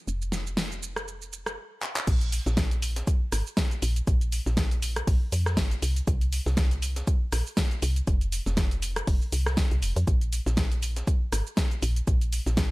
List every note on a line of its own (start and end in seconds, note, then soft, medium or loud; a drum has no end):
0.08 1.57 F1 medium
0.08 shaker soft
0.22 shaker soft
0.32 snare medium
0.32 shaker medium
0.47 shaker soft
0.57 snare loud
0.57 shaker soft
0.72 shaker soft
0.83 shaker medium
0.96 cross-stick medium
0.96 shaker soft
1.08 shaker soft
1.22 shaker soft
1.33 shaker medium
1.46 cross-stick medium
1.46 shaker soft
1.82 clap medium
1.96 clap medium
2.07 2.40 A#1 loud
2.07 kick loud
2.07 closed hi-hat medium
2.07 crash loud
2.07 shaker medium
2.07 shaker soft
2.21 closed hi-hat soft
2.21 shaker soft
2.32 open hi-hat loud
2.32 shaker medium
2.46 3.03 A#1 loud
2.46 snare soft
2.46 shaker soft
2.57 kick loud
2.57 snare loud
2.57 closed hi-hat medium
2.57 shaker medium
2.57 shaker soft
2.71 closed hi-hat medium
2.71 shaker soft
2.82 open hi-hat loud
2.82 shaker medium
2.96 snare medium
2.96 closed hi-hat medium
2.96 shaker soft
3.07 kick loud
3.07 closed hi-hat medium
3.07 shaker medium
3.07 shaker soft
3.32 3.43 G#1 medium
3.32 cross-stick medium
3.32 open hi-hat loud
3.32 shaker medium
3.47 shaker soft
3.57 kick loud
3.57 snare loud
3.57 closed hi-hat medium
3.57 shaker medium
3.57 shaker soft
3.71 closed hi-hat soft
3.71 shaker soft
3.82 4.01 A#1 loud
3.82 open hi-hat medium
3.82 shaker medium
3.96 closed hi-hat soft
3.96 shaker soft
4.07 4.40 A#1 loud
4.07 kick loud
4.07 closed hi-hat medium
4.07 shaker medium
4.07 shaker soft
4.21 closed hi-hat soft
4.21 shaker soft
4.32 open hi-hat loud
4.32 shaker medium
4.46 5.03 A#1 medium
4.46 snare soft
4.46 shaker soft
4.57 kick loud
4.57 snare loud
4.57 closed hi-hat medium
4.57 shaker medium
4.57 shaker soft
4.71 closed hi-hat medium
4.71 shaker soft
4.82 open hi-hat loud
4.82 shaker medium
4.96 cross-stick medium
4.96 closed hi-hat medium
4.96 shaker soft
5.07 5.18 A#1 medium
5.07 kick loud
5.07 closed hi-hat medium
5.07 open hi-hat medium
5.07 shaker soft
5.32 5.59 F2 medium
5.32 open hi-hat loud
5.32 shaker medium
5.46 cross-stick medium
5.46 snare soft
5.46 shaker soft
5.57 5.76 G#1 medium
5.57 kick loud
5.57 snare loud
5.57 closed hi-hat medium
5.57 shaker medium
5.57 shaker soft
5.71 closed hi-hat soft
5.71 shaker soft
5.82 6.01 C2 medium
5.82 open hi-hat loud
5.82 shaker medium
5.96 closed hi-hat soft
5.96 shaker soft
6.07 6.40 C2 loud
6.07 kick loud
6.07 closed hi-hat medium
6.07 shaker medium
6.07 shaker soft
6.21 closed hi-hat soft
6.21 shaker soft
6.32 open hi-hat loud
6.32 shaker medium
6.46 7.03 C2 loud
6.46 snare soft
6.46 shaker soft
6.57 kick loud
6.57 snare loud
6.57 closed hi-hat medium
6.57 shaker medium
6.57 shaker soft
6.71 closed hi-hat soft
6.71 shaker soft
6.82 open hi-hat loud
6.82 shaker medium
6.96 snare medium
6.96 closed hi-hat medium
6.96 shaker soft
7.07 kick loud
7.07 closed hi-hat medium
7.07 shaker medium
7.07 shaker soft
7.32 7.43 A#1 medium
7.32 cross-stick medium
7.32 open hi-hat loud
7.32 shaker medium
7.47 shaker soft
7.57 kick loud
7.57 snare loud
7.57 closed hi-hat medium
7.57 shaker medium
7.57 shaker soft
7.71 closed hi-hat soft
7.71 shaker soft
7.82 8.01 C2 loud
7.82 open hi-hat loud
7.82 shaker medium
7.96 closed hi-hat soft
7.96 shaker soft
8.07 8.40 F1 loud
8.07 kick loud
8.07 closed hi-hat medium
8.07 shaker medium
8.07 shaker soft
8.21 closed hi-hat soft
8.21 shaker soft
8.32 open hi-hat loud
8.32 shaker medium
8.46 9.03 F1 medium
8.46 snare soft
8.46 shaker soft
8.57 kick loud
8.57 snare loud
8.57 closed hi-hat medium
8.57 shaker medium
8.57 shaker soft
8.71 closed hi-hat medium
8.71 shaker soft
8.82 open hi-hat loud
8.82 shaker medium
8.96 cross-stick medium
8.96 closed hi-hat medium
8.96 shaker soft
9.07 9.18 F1 medium
9.07 kick loud
9.07 closed hi-hat medium
9.07 open hi-hat medium
9.07 shaker soft
9.22 shaker soft
9.32 9.65 C2 medium
9.32 open hi-hat loud
9.32 shaker medium
9.46 cross-stick medium
9.46 snare soft
9.46 shaker soft
9.57 kick loud
9.57 snare loud
9.57 closed hi-hat medium
9.57 shaker medium
9.57 shaker soft
9.71 9.84 C2 medium
9.71 closed hi-hat soft
9.71 shaker soft
9.82 9.93 F1 loud
9.82 open hi-hat medium
9.82 shaker medium
9.96 10.04 F2 loud
9.96 closed hi-hat soft
9.96 shaker soft
10.07 10.40 A#1 loud
10.07 kick loud
10.07 closed hi-hat medium
10.07 shaker medium
10.07 shaker soft
10.21 closed hi-hat soft
10.21 shaker soft
10.33 open hi-hat loud
10.33 shaker medium
10.46 11.03 A#1 loud
10.46 snare soft
10.46 shaker soft
10.57 kick loud
10.57 snare loud
10.57 closed hi-hat medium
10.57 shaker medium
10.57 shaker soft
10.72 closed hi-hat soft
10.72 shaker soft
10.83 open hi-hat loud
10.83 shaker medium
10.96 snare medium
10.96 closed hi-hat medium
10.96 shaker soft
11.07 kick loud
11.07 closed hi-hat medium
11.07 shaker medium
11.07 shaker soft
11.32 11.43 G#1 medium
11.32 cross-stick medium
11.32 open hi-hat loud
11.32 shaker medium
11.47 shaker soft
11.57 kick loud
11.57 snare loud
11.57 closed hi-hat medium
11.57 shaker medium
11.57 shaker soft
11.71 closed hi-hat soft
11.71 shaker soft
11.82 12.01 A#1 loud
11.82 open hi-hat medium
11.82 shaker medium
11.96 closed hi-hat soft
11.96 shaker soft
12.07 12.40 A#1 loud
12.07 kick loud
12.07 closed hi-hat medium
12.07 shaker medium
12.07 shaker soft
12.21 closed hi-hat soft
12.21 shaker soft
12.32 open hi-hat loud
12.32 shaker medium
12.46 12.71 A#1 loud
12.46 snare soft
12.46 shaker soft
12.57 kick loud
12.57 snare loud
12.57 closed hi-hat medium
12.57 shaker medium
12.57 shaker soft